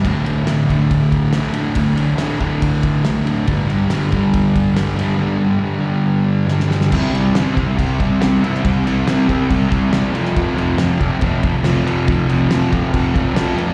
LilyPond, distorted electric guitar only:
\new Staff \with { instrumentName = "Distorted electric guitar" } { \clef bass \time 4/4 \key c \mixolydian \tempo 4 = 140 <d, a, d>8 <a, d>8 <d, a, d>8 <a, d>4. <d, a, d>8 <a, d>8 | <d, a, d>8 <a, d>8 <d, a, d>8 <a, d>4. <d, a, d>8 <a, d>8 | <g, d g>8 <d g>8 <g, d g>8 <d g>4. <g, d g>8 <d g>8 | <g, d g>8 <d g>8 <g, d g>8 <d g>4. <g, d g>8 <d g>8 |
<c g c'>8 <c g c'>8 <c g c'>8 <c g c'>8 <c g c'>8 <c g c'>8 <c g c'>8 <c g c'>8 | <c g c'>8 <c g c'>8 <c g c'>8 <c g c'>8 <c g c'>8 <c g c'>8 <c g c'>8 <f, c f>8 | <f, c f>8 <f, c f>8 <f, c f>8 <f, c f>8 <f, c f>8 <f, c f>8 <f, c f>8 <f, c f>8 | <f, c f>8 <f, c f>8 <f, c f>8 <f, c f>8 <f, c f>8 <f, c f>8 <f, c f>8 <f, c f>8 | }